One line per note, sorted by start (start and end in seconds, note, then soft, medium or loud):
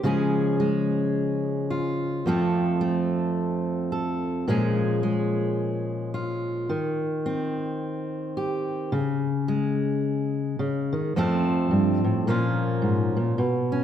0.03 2.22 C#3 medium
0.03 2.26 F3 medium
0.03 0.59 G#3 medium
0.03 2.23 C#4 medium
0.03 1.70 G#4 medium
0.60 2.26 G#3 medium
1.70 2.28 F4 medium
2.26 4.47 F2 medium
2.26 4.45 F3 medium
2.26 2.80 A3 medium
2.26 4.48 C4 medium
2.26 3.91 A4 medium
2.81 4.45 A3 medium
3.92 4.45 A4 medium
4.47 6.70 A#2 medium
4.47 6.67 F3 medium
4.47 5.02 G#3 medium
4.47 6.68 C#4 medium
4.47 6.14 G#4 medium
5.03 6.70 G#3 medium
6.14 6.70 F4 medium
6.69 8.92 D#3 medium
7.26 8.93 C4 medium
8.37 8.90 G4 medium
8.92 10.58 C#3 medium
9.48 11.15 G#3 medium
10.59 10.93 C#3 medium
10.93 11.15 D#3 medium
11.16 11.71 F2 medium
11.16 12.25 F3 medium
11.16 12.25 A3 medium
11.16 12.28 C4 medium
11.16 12.26 A4 medium
11.71 12.04 G2 medium
12.04 12.27 A2 medium
12.27 13.15 A#2 medium
12.27 13.36 F3 medium
12.27 13.36 A#3 medium
12.27 13.37 C#4 medium
12.27 13.40 F4 medium
12.82 13.15 G#2 medium
13.16 13.38 A#2 medium
13.38 13.84 B2 medium
13.72 13.84 C#4 medium